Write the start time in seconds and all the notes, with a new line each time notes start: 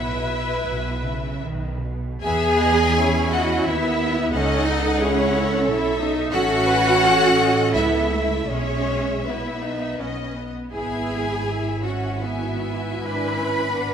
Already playing: B1 B2 E4 B4 E5
0.64 B1 B2
1.05 C#3
1.44 B1 D#3
1.84 B2
2.22 E2 B3 G#4 E5 G#5
2.61 D#5
2.97 C#4 E4 C#5
3.33 F#4 D#5 F#5
3.67 D#2 B3 E4 E5
4.00 B3
4.33 C#2 C#4 D#4 A4 D#5 F#5
4.67 D#4
5.00 C#4 E4 G#4 C#5
5.34 A4
5.66 B1 E4 E5
5.99 D#4
6.31 A1 C#4 F#4 A4 E5 F#5
6.67 B4
7.01 A4 C#5
7.39 D#5
7.75 C#2 B3 E4 E5
8.12 A3
8.49 B1 G#3 C#4 G#4 C#5 E5
9.26 B3 E4 B4
9.64 D#4
10.01 B1 C#4 D#5
10.37 B3
10.73 G#1 B3 E4 G#4 E5 G#5
11.48 E4 E5
11.84 C#4 F#4 F#5
12.21 B3 E4 F#4 E5 G#5
12.61 G#5
13.02 G#1 D4 E4 B4 B5
13.38 C#4
13.73 B3 D4 F#5